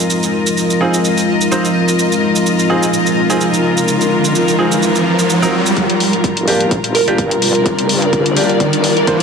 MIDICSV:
0, 0, Header, 1, 8, 480
1, 0, Start_track
1, 0, Tempo, 472441
1, 100, Time_signature, 4, 2, 24, 8
1, 9377, End_track
2, 0, Start_track
2, 0, Title_t, "String section"
2, 0, Program_c, 0, 48
2, 0, Note_on_c, 0, 65, 88
2, 0, Note_on_c, 0, 70, 88
2, 0, Note_on_c, 0, 75, 75
2, 5860, Note_off_c, 0, 75, 0
2, 7465, Note_on_c, 0, 74, 89
2, 9377, Note_off_c, 0, 65, 0
2, 9377, Note_off_c, 0, 70, 0
2, 9377, Note_off_c, 0, 74, 0
2, 9377, End_track
3, 0, Start_track
3, 0, Title_t, "Synth pluck"
3, 0, Program_c, 1, 84
3, 7059, Note_on_c, 1, 70, 95
3, 7210, Note_off_c, 1, 70, 0
3, 8499, Note_on_c, 1, 74, 86
3, 8583, Note_off_c, 1, 74, 0
3, 8631, Note_on_c, 1, 74, 73
3, 8701, Note_off_c, 1, 74, 0
3, 9111, Note_on_c, 1, 70, 90
3, 9377, Note_off_c, 1, 70, 0
3, 9377, End_track
4, 0, Start_track
4, 0, Title_t, "Grand piano"
4, 0, Program_c, 2, 0
4, 820, Note_on_c, 2, 60, 71
4, 820, Note_on_c, 2, 63, 69
4, 820, Note_on_c, 2, 65, 67
4, 820, Note_on_c, 2, 68, 76
4, 955, Note_off_c, 2, 60, 0
4, 955, Note_off_c, 2, 63, 0
4, 955, Note_off_c, 2, 65, 0
4, 955, Note_off_c, 2, 68, 0
4, 1540, Note_on_c, 2, 60, 77
4, 1540, Note_on_c, 2, 63, 63
4, 1540, Note_on_c, 2, 65, 66
4, 1540, Note_on_c, 2, 72, 81
4, 1674, Note_off_c, 2, 60, 0
4, 1674, Note_off_c, 2, 63, 0
4, 1674, Note_off_c, 2, 65, 0
4, 1674, Note_off_c, 2, 72, 0
4, 2740, Note_on_c, 2, 60, 78
4, 2740, Note_on_c, 2, 63, 70
4, 2740, Note_on_c, 2, 65, 69
4, 2740, Note_on_c, 2, 68, 84
4, 2874, Note_off_c, 2, 60, 0
4, 2874, Note_off_c, 2, 63, 0
4, 2874, Note_off_c, 2, 65, 0
4, 2874, Note_off_c, 2, 68, 0
4, 3351, Note_on_c, 2, 60, 84
4, 3351, Note_on_c, 2, 63, 84
4, 3351, Note_on_c, 2, 65, 78
4, 3351, Note_on_c, 2, 68, 93
4, 3464, Note_off_c, 2, 60, 0
4, 3464, Note_off_c, 2, 63, 0
4, 3464, Note_off_c, 2, 65, 0
4, 3464, Note_off_c, 2, 68, 0
4, 4659, Note_on_c, 2, 60, 72
4, 4659, Note_on_c, 2, 65, 71
4, 4660, Note_on_c, 2, 63, 69
4, 4660, Note_on_c, 2, 68, 82
4, 4794, Note_off_c, 2, 60, 0
4, 4794, Note_off_c, 2, 63, 0
4, 4794, Note_off_c, 2, 65, 0
4, 4794, Note_off_c, 2, 68, 0
4, 5510, Note_on_c, 2, 65, 82
4, 5510, Note_on_c, 2, 70, 96
4, 5511, Note_on_c, 2, 60, 89
4, 5511, Note_on_c, 2, 63, 82
4, 5624, Note_off_c, 2, 60, 0
4, 5624, Note_off_c, 2, 63, 0
4, 5624, Note_off_c, 2, 65, 0
4, 5624, Note_off_c, 2, 70, 0
4, 6579, Note_on_c, 2, 58, 83
4, 6579, Note_on_c, 2, 62, 75
4, 6579, Note_on_c, 2, 65, 73
4, 6579, Note_on_c, 2, 67, 90
4, 6714, Note_off_c, 2, 58, 0
4, 6714, Note_off_c, 2, 62, 0
4, 6714, Note_off_c, 2, 65, 0
4, 6714, Note_off_c, 2, 67, 0
4, 7190, Note_on_c, 2, 58, 86
4, 7190, Note_on_c, 2, 62, 78
4, 7190, Note_on_c, 2, 65, 80
4, 7190, Note_on_c, 2, 67, 94
4, 7304, Note_off_c, 2, 58, 0
4, 7304, Note_off_c, 2, 62, 0
4, 7304, Note_off_c, 2, 65, 0
4, 7304, Note_off_c, 2, 67, 0
4, 8499, Note_on_c, 2, 65, 68
4, 8500, Note_on_c, 2, 58, 72
4, 8500, Note_on_c, 2, 62, 70
4, 8500, Note_on_c, 2, 67, 83
4, 8634, Note_off_c, 2, 58, 0
4, 8634, Note_off_c, 2, 62, 0
4, 8634, Note_off_c, 2, 65, 0
4, 8634, Note_off_c, 2, 67, 0
4, 9220, Note_on_c, 2, 58, 77
4, 9220, Note_on_c, 2, 62, 70
4, 9220, Note_on_c, 2, 65, 70
4, 9220, Note_on_c, 2, 72, 82
4, 9354, Note_off_c, 2, 58, 0
4, 9354, Note_off_c, 2, 62, 0
4, 9354, Note_off_c, 2, 65, 0
4, 9354, Note_off_c, 2, 72, 0
4, 9377, End_track
5, 0, Start_track
5, 0, Title_t, "Ambient pad"
5, 0, Program_c, 3, 92
5, 0, Note_on_c, 3, 53, 72
5, 0, Note_on_c, 3, 56, 80
5, 0, Note_on_c, 3, 60, 68
5, 0, Note_on_c, 3, 63, 69
5, 5819, Note_off_c, 3, 53, 0
5, 5819, Note_off_c, 3, 56, 0
5, 5819, Note_off_c, 3, 60, 0
5, 5819, Note_off_c, 3, 63, 0
5, 5859, Note_on_c, 3, 65, 69
5, 5859, Note_on_c, 3, 70, 87
5, 5860, Note_on_c, 3, 55, 72
5, 5860, Note_on_c, 3, 62, 67
5, 9377, Note_off_c, 3, 55, 0
5, 9377, Note_off_c, 3, 62, 0
5, 9377, Note_off_c, 3, 65, 0
5, 9377, Note_off_c, 3, 70, 0
5, 9377, End_track
6, 0, Start_track
6, 0, Title_t, "Wobble bass"
6, 0, Program_c, 4, 39
6, 5859, Note_on_c, 4, 31, 97
6, 5970, Note_off_c, 4, 31, 0
6, 6470, Note_on_c, 4, 29, 89
6, 6690, Note_off_c, 4, 29, 0
6, 6710, Note_on_c, 4, 31, 91
6, 6930, Note_off_c, 4, 31, 0
6, 6950, Note_on_c, 4, 31, 94
6, 7282, Note_off_c, 4, 31, 0
6, 7299, Note_on_c, 4, 43, 96
6, 7649, Note_off_c, 4, 43, 0
6, 7670, Note_on_c, 4, 29, 93
6, 8002, Note_off_c, 4, 29, 0
6, 8019, Note_on_c, 4, 43, 92
6, 8370, Note_off_c, 4, 43, 0
6, 8391, Note_on_c, 4, 34, 98
6, 8610, Note_off_c, 4, 34, 0
6, 8631, Note_on_c, 4, 31, 93
6, 8850, Note_off_c, 4, 31, 0
6, 8871, Note_on_c, 4, 31, 99
6, 9202, Note_off_c, 4, 31, 0
6, 9377, End_track
7, 0, Start_track
7, 0, Title_t, "Riser"
7, 0, Program_c, 5, 103
7, 2020, Note_on_c, 5, 60, 70
7, 5859, Note_off_c, 5, 60, 0
7, 5859, Note_on_c, 5, 60, 73
7, 9377, Note_off_c, 5, 60, 0
7, 9377, End_track
8, 0, Start_track
8, 0, Title_t, "Drums"
8, 103, Note_on_c, 9, 82, 54
8, 205, Note_off_c, 9, 82, 0
8, 235, Note_on_c, 9, 82, 34
8, 336, Note_off_c, 9, 82, 0
8, 475, Note_on_c, 9, 82, 64
8, 576, Note_off_c, 9, 82, 0
8, 584, Note_on_c, 9, 82, 52
8, 685, Note_off_c, 9, 82, 0
8, 715, Note_on_c, 9, 82, 33
8, 816, Note_off_c, 9, 82, 0
8, 955, Note_on_c, 9, 82, 67
8, 1056, Note_off_c, 9, 82, 0
8, 1063, Note_on_c, 9, 82, 54
8, 1165, Note_off_c, 9, 82, 0
8, 1195, Note_on_c, 9, 82, 33
8, 1296, Note_off_c, 9, 82, 0
8, 1434, Note_on_c, 9, 82, 61
8, 1536, Note_off_c, 9, 82, 0
8, 1544, Note_on_c, 9, 82, 53
8, 1645, Note_off_c, 9, 82, 0
8, 1675, Note_on_c, 9, 82, 33
8, 1776, Note_off_c, 9, 82, 0
8, 1915, Note_on_c, 9, 82, 62
8, 2016, Note_off_c, 9, 82, 0
8, 2024, Note_on_c, 9, 82, 57
8, 2125, Note_off_c, 9, 82, 0
8, 2155, Note_on_c, 9, 82, 33
8, 2257, Note_off_c, 9, 82, 0
8, 2395, Note_on_c, 9, 82, 65
8, 2497, Note_off_c, 9, 82, 0
8, 2504, Note_on_c, 9, 82, 54
8, 2605, Note_off_c, 9, 82, 0
8, 2635, Note_on_c, 9, 82, 34
8, 2736, Note_off_c, 9, 82, 0
8, 2875, Note_on_c, 9, 82, 63
8, 2976, Note_off_c, 9, 82, 0
8, 2983, Note_on_c, 9, 82, 57
8, 3085, Note_off_c, 9, 82, 0
8, 3115, Note_on_c, 9, 82, 35
8, 3216, Note_off_c, 9, 82, 0
8, 3355, Note_on_c, 9, 82, 65
8, 3456, Note_off_c, 9, 82, 0
8, 3464, Note_on_c, 9, 82, 54
8, 3565, Note_off_c, 9, 82, 0
8, 3595, Note_on_c, 9, 82, 34
8, 3696, Note_off_c, 9, 82, 0
8, 3834, Note_on_c, 9, 82, 66
8, 3936, Note_off_c, 9, 82, 0
8, 3944, Note_on_c, 9, 82, 55
8, 4045, Note_off_c, 9, 82, 0
8, 4075, Note_on_c, 9, 82, 34
8, 4176, Note_off_c, 9, 82, 0
8, 4314, Note_on_c, 9, 82, 65
8, 4416, Note_off_c, 9, 82, 0
8, 4423, Note_on_c, 9, 82, 55
8, 4525, Note_off_c, 9, 82, 0
8, 4554, Note_on_c, 9, 82, 33
8, 4656, Note_off_c, 9, 82, 0
8, 4794, Note_on_c, 9, 82, 67
8, 4896, Note_off_c, 9, 82, 0
8, 4903, Note_on_c, 9, 82, 56
8, 5005, Note_off_c, 9, 82, 0
8, 5034, Note_on_c, 9, 82, 33
8, 5136, Note_off_c, 9, 82, 0
8, 5274, Note_on_c, 9, 82, 64
8, 5376, Note_off_c, 9, 82, 0
8, 5383, Note_on_c, 9, 82, 54
8, 5485, Note_off_c, 9, 82, 0
8, 5514, Note_on_c, 9, 82, 34
8, 5616, Note_off_c, 9, 82, 0
8, 5754, Note_on_c, 9, 82, 62
8, 5856, Note_off_c, 9, 82, 0
8, 5859, Note_on_c, 9, 36, 117
8, 5859, Note_on_c, 9, 42, 77
8, 5961, Note_off_c, 9, 36, 0
8, 5961, Note_off_c, 9, 42, 0
8, 5991, Note_on_c, 9, 42, 53
8, 6092, Note_off_c, 9, 42, 0
8, 6100, Note_on_c, 9, 46, 94
8, 6201, Note_off_c, 9, 46, 0
8, 6231, Note_on_c, 9, 42, 35
8, 6332, Note_off_c, 9, 42, 0
8, 6339, Note_on_c, 9, 36, 109
8, 6340, Note_on_c, 9, 42, 77
8, 6441, Note_off_c, 9, 36, 0
8, 6441, Note_off_c, 9, 42, 0
8, 6471, Note_on_c, 9, 42, 53
8, 6572, Note_off_c, 9, 42, 0
8, 6579, Note_on_c, 9, 46, 96
8, 6681, Note_off_c, 9, 46, 0
8, 6710, Note_on_c, 9, 42, 37
8, 6812, Note_off_c, 9, 42, 0
8, 6819, Note_on_c, 9, 36, 114
8, 6819, Note_on_c, 9, 42, 78
8, 6921, Note_off_c, 9, 36, 0
8, 6921, Note_off_c, 9, 42, 0
8, 6950, Note_on_c, 9, 42, 52
8, 7052, Note_off_c, 9, 42, 0
8, 7059, Note_on_c, 9, 46, 99
8, 7161, Note_off_c, 9, 46, 0
8, 7190, Note_on_c, 9, 42, 35
8, 7292, Note_off_c, 9, 42, 0
8, 7299, Note_on_c, 9, 36, 115
8, 7299, Note_on_c, 9, 42, 77
8, 7401, Note_off_c, 9, 36, 0
8, 7401, Note_off_c, 9, 42, 0
8, 7430, Note_on_c, 9, 42, 54
8, 7532, Note_off_c, 9, 42, 0
8, 7539, Note_on_c, 9, 46, 100
8, 7641, Note_off_c, 9, 46, 0
8, 7670, Note_on_c, 9, 42, 35
8, 7772, Note_off_c, 9, 42, 0
8, 7779, Note_on_c, 9, 36, 122
8, 7779, Note_on_c, 9, 42, 76
8, 7881, Note_off_c, 9, 36, 0
8, 7881, Note_off_c, 9, 42, 0
8, 7910, Note_on_c, 9, 42, 51
8, 8012, Note_off_c, 9, 42, 0
8, 8019, Note_on_c, 9, 46, 99
8, 8121, Note_off_c, 9, 46, 0
8, 8150, Note_on_c, 9, 42, 34
8, 8252, Note_off_c, 9, 42, 0
8, 8259, Note_on_c, 9, 36, 112
8, 8259, Note_on_c, 9, 42, 74
8, 8361, Note_off_c, 9, 36, 0
8, 8361, Note_off_c, 9, 42, 0
8, 8390, Note_on_c, 9, 42, 50
8, 8492, Note_off_c, 9, 42, 0
8, 8499, Note_on_c, 9, 46, 98
8, 8601, Note_off_c, 9, 46, 0
8, 8630, Note_on_c, 9, 42, 36
8, 8732, Note_off_c, 9, 42, 0
8, 8739, Note_on_c, 9, 36, 118
8, 8739, Note_on_c, 9, 42, 75
8, 8841, Note_off_c, 9, 36, 0
8, 8841, Note_off_c, 9, 42, 0
8, 8870, Note_on_c, 9, 42, 53
8, 8972, Note_off_c, 9, 42, 0
8, 8979, Note_on_c, 9, 46, 107
8, 9081, Note_off_c, 9, 46, 0
8, 9110, Note_on_c, 9, 42, 35
8, 9212, Note_off_c, 9, 42, 0
8, 9219, Note_on_c, 9, 36, 118
8, 9219, Note_on_c, 9, 42, 78
8, 9321, Note_off_c, 9, 36, 0
8, 9321, Note_off_c, 9, 42, 0
8, 9377, End_track
0, 0, End_of_file